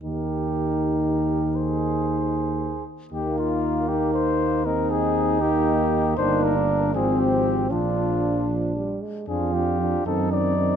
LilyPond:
<<
  \new Staff \with { instrumentName = "Trumpet" } { \time 6/8 \key ees \major \tempo 4. = 78 bes'2. | c''2~ c''8 r8 | g'8 f'4 g'8 c''4 | bes'8 aes'4 g'4. |
c''8 bes'4 aes'8 g'4 | f'4. r4. | \key f \dorian aes'8 g'4 a'8 d''4 | }
  \new Staff \with { instrumentName = "Flugelhorn" } { \time 6/8 \key ees \major g'2. | aes'2~ aes'8 r8 | bes2. | ees'2. |
d'4. c'4. | d'2~ d'16 r8. | \key f \dorian f'4. ees'4. | }
  \new Staff \with { instrumentName = "French horn" } { \time 6/8 \key ees \major ees'2.~ | ees'2~ ees'8 r8 | ees'4. ees'4. | ees'4. ees'4. |
ees'8. d'8. c'4. | d'2~ d'8 r8 | \key f \dorian d'8 d'8 d'8 c'8 c'8 c'8 | }
  \new Staff \with { instrumentName = "Trombone" } { \clef bass \time 6/8 \key ees \major ees2.~ | ees2~ ees8 r8 | bes4. bes4. | c'4. bes4. |
bes4. f4. | f4. f8 g8 aes8 | \key f \dorian f8 f8 f8 ees8 ees8 ees8 | }
  \new Staff \with { instrumentName = "Tuba" } { \clef bass \time 6/8 \key ees \major ees,2.~ | ees,2~ ees,8 r8 | ees,2.~ | ees,2. |
g,,4. aes,,4. | bes,,2~ bes,,8 r8 | \key f \dorian f,4. fis,4. | }
>>